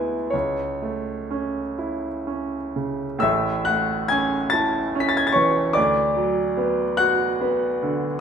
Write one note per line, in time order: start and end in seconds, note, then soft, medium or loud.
0.00 0.29 D2 soft
0.00 0.14 G#3 soft
0.00 0.29 B3 soft
0.00 0.29 E4 soft
0.00 0.32 G#5 medium
0.30 3.19 C#2 soft
0.30 2.74 C#5 medium
0.82 1.59 A3 soft
1.31 2.07 C#4 soft
1.79 2.56 E4 soft
2.27 3.05 C#4 soft
2.76 3.23 C#3 soft
3.19 5.71 A1 medium
3.19 5.69 A2 medium
3.19 3.63 E5 medium
3.19 3.65 E6 medium
3.65 4.37 A3 soft
3.65 4.07 F#5 medium
3.65 4.09 F#6 medium
4.08 4.78 C#4 soft
4.08 4.50 G#5 medium
4.08 4.52 G#6 medium
4.50 5.19 E4 soft
4.50 4.95 A5 medium
4.50 4.98 A6 medium
4.95 5.60 C#4 soft
5.00 5.09 B6 medium
5.09 5.17 A6 medium
5.17 5.26 G#6 medium
5.27 5.35 A6 medium
5.32 5.76 E3 soft
5.32 5.72 C#5 medium
5.32 5.74 C#6 medium
5.73 8.19 D2 medium
5.73 6.96 D5 medium
5.73 7.00 D6 medium
6.16 6.84 F#3 soft
6.57 7.25 B3 soft
6.97 7.67 F#4 soft
6.97 8.17 F#5 medium
6.97 8.20 F#6 medium
7.41 8.06 B3 soft
7.83 8.20 D3 soft